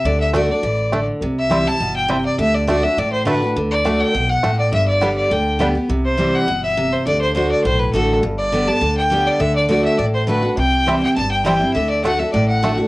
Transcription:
<<
  \new Staff \with { instrumentName = "Fiddle" } { \time 4/4 \key d \mixolydian \tempo 4 = 205 d''8 e''8 d''8 d''2 r8 | r8 e''4 a''4 g''4 d''8 | e''8 d''8 d''8 e''8 d''8 c''8 b'8. r16 | r8 d''4 g''4 fis''4 d''8 |
e''8 d''4 d''8 g''4 r4 | r8 c''4 fis''4 e''4 c''8 | d''8 c''8 c''8 d''8 c''8 b'8 a'8. r16 | r8 d''4 a''4 g''4 d''8 |
e''8 d''8 d''8 e''8 d''8 c''8 b'8. r16 | g''4. g''8 a''8 g''8 g''4 | e''8 d''8 fis''8 e''8 d''8 fis''4 r8 | }
  \new Staff \with { instrumentName = "Five-string banjo" } { \time 4/4 \key d \mixolydian r4 <a d'>8 r4. <a d'>8 r8 | r4 <g c' e'>8 r4. <g c' e'>8 r8 | r4 <a d'>8 r4. <a d'>8 r8 | r4 <a d'>8 r4. <a d'>8 r8 |
r4 <g b d'>8 r4. <g b d'>8 r8 | r1 | r1 | r1 |
r1 | r4 <g c' e'>8 r4. <g c' e'>8 r8 | r4 <a d'>8 r4. <a d'>8 r8 | }
  \new Staff \with { instrumentName = "Steel-string acoustic guitar" } { \time 4/4 \key d \mixolydian << { r4 <d a d' fis'>8 <d' fis'>8 r2 | r4 <e g c' e'>8 <c' e'>8 r2 | r4 <d a d' fis'>8 <d' fis'>8 r4 <d a d' fis'>8 <d' fis'>8 | r4 <d a d' fis'>4 r2 |
r4 <d g b g'>4 r4 <d g b g'>8 <b g'>8 | r4 <e g c' e'>4 r2 | r4 <d a d' fis'>4 r4 <d a d' fis'>4 | r4 <d g b g'>8 <b g'>8 r4 <d g b g'>4 |
r4 <d a d' fis'>4 r4 <d a d' fis'>8 <d' fis'>8 | r4 <e g c' e'>8 <c' e'>8 r4 <e g c' e'>8 <c' e'>8 | r4 <d a d' fis'>8 <d' fis'>8 r4 <d a d' fis'>8 <d' fis'>8 | } \\ { d2 e4 d4 | c2 b,4 c4 | d2 a,2 | d2 b,4 a,4 |
g,2 d2 | c2 b,4 c4 | d2 a,2 | g,2 d2 |
d2 a,2 | c2 g,2 | d2 a,2 | } >> }
  \new Staff \with { instrumentName = "Upright bass" } { \clef bass \time 4/4 \key d \mixolydian d,2 a,,2 | c,2 g,,2 | d,2 a,,2 | d,2 b,,4 a,,4 |
g,,2 d,2 | c,2 g,,2 | d,2 b,,4 a,,4 | g,,2 d,2 |
d,2 a,,2 | c,2 g,,2 | d,2 a,,2 | }
>>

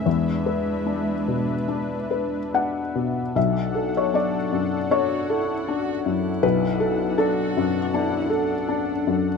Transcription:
<<
  \new Staff \with { instrumentName = "Analog synth pad" } { \time 4/4 \key b \dorian \tempo 4 = 78 <d' b' e''>1 | <d' a' fis''>1 | <d' a' fis''>1 | }
  \new Staff \with { instrumentName = "Cello" } { \time 4/4 \key b \dorian gis2. r4 | r2 fis'8 e'8 fis'8 e'8~ | e'4 fis'4 e'8 d'4. | }
  \new Staff \with { instrumentName = "Felt piano" } { \time 4/4 \key b \dorian << { r2. fis''4 | e''8. cis''16 d''4 cis''2 | b'4 a'2 r4 | } \\ { e,8 b'8 d'8 b,8 d'8 b'8 d'8 b,8 | b,,8 a'8 d'8 fis,8 d'8 a'8 d'8 fis,8 | b,,8 a'8 d'8 fis,8 d'8 a'8 d'8 fis,8 | } >> }
>>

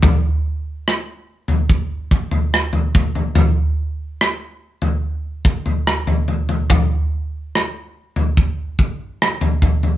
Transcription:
\new DrumStaff \with { instrumentName = "Drums" } \drummode { \time 4/4 \tempo 4 = 72 <bd tomfh>4 ss8. tomfh16 bd8 bd16 tomfh16 ss16 tomfh16 <bd tomfh>16 tomfh16 | tomfh4 ss8. tomfh16 r8 bd16 tomfh16 ss16 tomfh16 tomfh16 tomfh16 | <bd tomfh>4 ss8. tomfh16 bd8 bd8 ss16 tomfh16 <bd tomfh>16 tomfh16 | }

